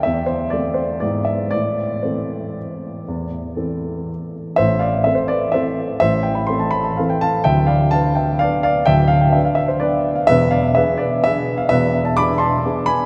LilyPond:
\new Staff \with { instrumentName = "Grand piano" } { \time 3/4 \key a \minor \tempo 4 = 125 << { e''8 c''8 d''8 c''8 d''8 e''8 | d''4 c''2~ | c''2~ c''8 r8 | <c'' e''>8 <d'' f''>8 e''16 c''16 <b' d''>8 <c'' e''>4 |
<c'' e''>8 g''16 b''16 c'''16 a''16 b''16 a''16 f''16 g''16 <f'' a''>8 | <e'' g''>8 <d'' f''>8 <f'' a''>8 <e'' g''>8 <d'' f''>8 <d'' f''>8 | <e'' g''>8 f''16 g''16 e''16 f''16 e''16 c''16 <b' d''>8. f''16 | <b' e''>8 <d'' f''>8 <b' e''>8 <b' d''>8 <b' e''>8. f''16 |
<b' e''>8. a''16 <b'' d'''>8 <a'' c'''>4 <gis'' b''>8 | } \\ { e,4 <a c' a'>4 <gis, e b b'>4 | a,4 <e c' a'>2 | e,4 <e c' a'>2 | <a,, a,>4 <c' a'>4 <e c' a'>4 |
<a,, a,>4 <c' a'>4 <e c' a'>4 | <d,, d,>4 <d' b'>4 <b d' b'>4 | <d,, d,>4 <d' b'>4 <b d'>4 | <e,, e,>4 <d' gis'>4 <b d' gis'>4 |
<e,, e,>4 <d' gis'>4 <b d' gis'>4 | } >> }